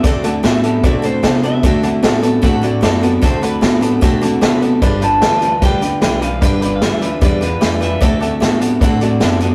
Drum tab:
HH |xxxxxxxx|xxxxxxxx|xxxxxxxx|xxxxxxxx|
SD |--o---o-|--o---o-|--o---o-|--o---o-|
BD |o---o---|o---o---|o---o---|o---o---|

HH |xxxxxxxx|xxxxxxxx|
SD |--o---o-|--o---o-|
BD |o---o---|o---o---|